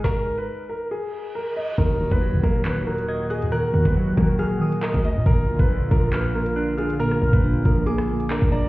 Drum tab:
CC |----------------|x---------------|----------------|----------------|
HH |----------------|x--x--x-x--x--xx|x--x--x-x--x-xx-|x--x--x-x--x--xx|
CP |----------------|--------x-------|------------x---|--------x-------|
SD |o---------------|----------------|----------------|----------------|
BD |o---------------|o--o--o---------|---o--o------o--|o--o--o---------|

CC |----------------|
HH |x--x--x-x--x-xx-|
CP |------------x---|
SD |-r-------r------|
BD |---o--o------o--|